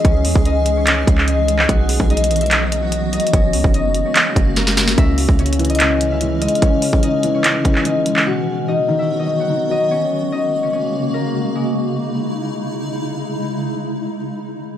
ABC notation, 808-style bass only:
X:1
M:4/4
L:1/16
Q:1/4=146
K:C#dor
V:1 name="808-style bass" clef=bass
C,,2 E,, C,,6- C,, C,,6 | B,,,3 B,,,12 z | F,,,2 C,, F,,,4 z3 F,,,6 | C,,3 C,,12 z |
z16 | z16 | z16 | z16 |
z16 |]